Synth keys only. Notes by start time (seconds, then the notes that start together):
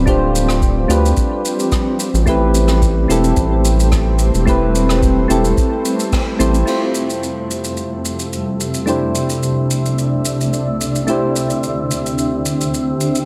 Already playing: A3 D4 F4 G4 B4
0.06 A3 D4 F4 G4 C5
0.88 A3 D4 F4 G4 B4
2.26 A3 C4 E4 G4 B4
3.08 A3 C4 E4 G4 A4
4.46 A3 C4 E4 G4 B4
5.28 A3 C4 E4 G4 A4
6.39 A3 C4 E4 G4 C5
6.66 A3 E4 F4 G4 C5
8.86 A3 D4 E4 G4 C5
11.07 A3 D4 E4 G4 C5